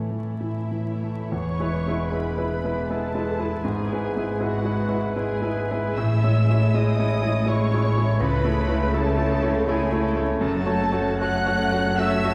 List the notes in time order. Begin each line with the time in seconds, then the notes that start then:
Already playing: A2 E3 A3 E4 C#5 G#5 A5
0.10 E3
0.37 A2 E4 E5
0.71 E3
0.85 A3 E4 C#5
1.04 A3
1.30 E1 E2 B3 G#4 C#5 C#6
1.54 E4 B4
1.60 G#3 E4 B4
1.73 B3 G#4
1.88 G#3 E4 B4
2.10 G#3 B3 E4 G#4 B4 B5
2.30 E4 B4
2.37 G#3 E4 B4
2.48 B3 G#4
2.64 G#3 E4 B4
2.68 E4 B4
2.86 G#3 B3 G#4 A4 A5
2.90 E4 B4
3.06 E4 B4
3.15 G#3 E4 B4
3.25 B3 G#4
3.39 G#3 E4 B4
3.46 E4 B4
3.63 G#1 G#2 B3 G#4 G#5
3.86 E4 B4
3.92 G#3 E4 B4
4.05 B3 G#4
4.16 G#3 E4 B4
4.23 E4 B4
4.39 G#3 B3 E4 F#4 G#4 B4 F#5
4.59 E4 B4
4.65 G#3 E4 B4
4.79 B3 G#4
4.88 G#3 E4 B4
4.99 E4 B4
5.15 G#3 B3 E4 G#4 B4 G#5
5.37 E4 B4
5.41 G#3 E4 B4
5.59 B3 G#4
5.71 G#3 E4 B4
5.79 E4 B4
5.96 A1 A2 E4 G#4 E5 E6
6.21 G#3 C#4 E4 A4 C#5
6.39 E4 G#4
6.50 G#3 E4 C#5
6.59 C#4 A4
6.74 G#3 E4 G#4 C#5 D#5 D#6
6.96 G#3 C#4 E4 A4 C#5
7.13 E4 G#4
7.22 G#3 E4 C#5
7.32 C#4 A4
7.46 G#3 E4 C#5 C#6
7.50 E4 G#4
7.70 G#3 C#4 E4 A4 C#5
7.87 E4 G#4
7.97 G#3 E4 C#5
8.05 C#4 A4
8.20 C#2 C#3 B4 B5
8.24 E4 A4
8.42 A3 C#4 E4 C#5
8.59 E4 A4
8.67 A3 E4 C#5
8.76 C#4 C#5
8.94 A3 E4 A4 C#5 A5
9.13 A3 C#4 C#5
9.17 E4 C#5
9.31 E4 A4
9.42 A3 E4 C#5
9.49 C#4 C#5
9.67 A3 E4 G#4 A4 C#5 G#5
9.84 C#4 C#5
9.92 A3 E4 C#5
10.02 E4 A4
10.15 A3 E4 C#5
10.21 C#4 C#5
10.40 F#1 F#2 A3 A4 A5
10.59 C#4 F#4
10.66 A3 F#4 C#5
10.80 A3 A4
10.92 A3 F#4 C#5
11.01 C#4 F#4
11.20 A3 F#4 A4 C#5 F#5 F#6
11.39 C#4 F#4
11.46 A3 F#4 C#5
11.59 A3 A4
11.72 A3 F#4 C#5
11.76 C#4 F#4
11.96 A3 F#4 A4 C#5 E5 E6
12.13 C#4 F#4
12.24 A3 F#4 C#5